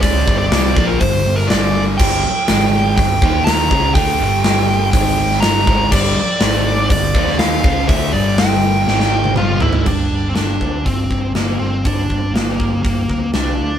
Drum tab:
CC |----------------|x---------------|----------------|x---------------|
HH |o---o---o---o---|----o---o---o---|o---o---o---o---|----o---o---o---|
SD |----o------oo---|----o-------o---|----o------oo---|----o------oo---|
T1 |----------------|----------------|----------------|----------------|
T2 |----------------|----------------|----------------|----------------|
FT |----------------|----------------|----------------|----------------|
BD |o-o---o-o-------|o-------o-o---o-|o-------o-----o-|o-------o-o---o-|

CC |----------------|x---------------|----------------|
HH |o---o-----------|----o---o---o---|o---o---o---o---|
SD |----o---oo------|----o-------o---|----o-------o---|
T1 |-----------o----|----------------|----------------|
T2 |------------o---|----------------|----------------|
FT |--------------oo|----------------|----------------|
BD |o---------------|o-----o-o-o-----|o-o---o-o-o-----|